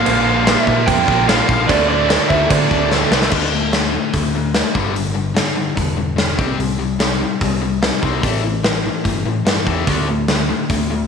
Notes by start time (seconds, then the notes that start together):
Already playing: A#2 F3 A#3 F5
0.04 A#1 A#2 D3 F3 G3 A#3 D4 F4 A#4, cowbell, crash
0.17 G3 D4 F4
0.25 F3 G3 A#3 D4 F4 A#4, cowbell
0.35 G3 D4 F4 A#4
0.44 A#2 D3 F3 G3 A#3 D4 F4, snare, cowbell, crash
0.48 A#4
0.58 E5
0.65 A#2 G3 D4 F4 A#4, kick, cowbell
0.76 G3 D4 F4 A#4
0.87 F2 G5, kick, cowbell, crash
0.98 D4 F4 A#4
1.06 A#1 F3 G3 A#3 D4 F4 A#4, kick
1.12 A#2
1.26 A#2 D3 F3 G3 A#3 D4 F4 F5, snare, cowbell, crash
1.30 A#4
1.47 A#1 F3 G3 A#3 D4 A#4, kick
1.67 D2 D3 E3 A3 D4 E4 A4 D5, kick, cowbell, crash
1.78 D4 E4 A4
1.88 A3 D4 E4 D5, cowbell
1.92 E3
1.98 D4 E4 A4
2.09 D3 E3 A3 D4 E4 A4, snare, cowbell, crash
2.29 D2 A3 D4 E4 A4 E5, kick, cowbell
2.34 D3
2.42 D4 E4 A4
2.50 D3 D5, kick, cowbell, crash
2.61 D4 E4 A4
2.69 D2 E3 A3 D4, kick
2.73 A3 D4 E4 A4
2.90 D3 E3 A3 D4 E4 A4, snare, cowbell
3.10 C2 D3 E3 A3 D4 E4 A4, snare
3.20 D4 A4, snare
3.31 D2 D3 A3 D4, kick, crash
3.52 D3 A3
3.72 D3 A3, snare, open hi-hat
3.92 D3 A3
4.13 D2 D3 A3, kick, open hi-hat
4.35 D3 A3
4.54 D3 A3, snare, open hi-hat
4.73 G1 G2 D3 G3, kick
4.94 G2 D3, open hi-hat
5.14 G2 D3
5.34 G2 D3, snare, open hi-hat
5.55 G2 D3
5.76 E1 G2 D3, kick, open hi-hat
5.97 G2 D3
6.16 G2 D3, snare, open hi-hat
6.37 C2 C3 G3 C4, kick
6.58 C2 C3 G3, open hi-hat
6.79 C3 G3
6.99 C3 G3, snare, open hi-hat
7.20 C3 G3
7.41 C2 C3 G3, kick, open hi-hat
7.61 C3 G3
7.82 C3 G3, snare, open hi-hat
8.02 C2 C3 G3 C4, kick
8.22 A1 A2 E3 A3, kick, open hi-hat
8.43 A2 E3
8.63 A2 E3, snare, open hi-hat
8.84 A2 E3
9.04 G1 A2 E3, kick, open hi-hat
9.24 A2 E3
9.44 G2 A2 E3, snare, open hi-hat
9.65 E2 A2 E3 A3, kick
9.87 D2 D3 A3 D4, kick, open hi-hat
10.09 D3 A3
10.28 D3 A3, snare, open hi-hat
10.49 D3 A3
10.70 D2 D3 A3, kick, open hi-hat
10.90 D3 A3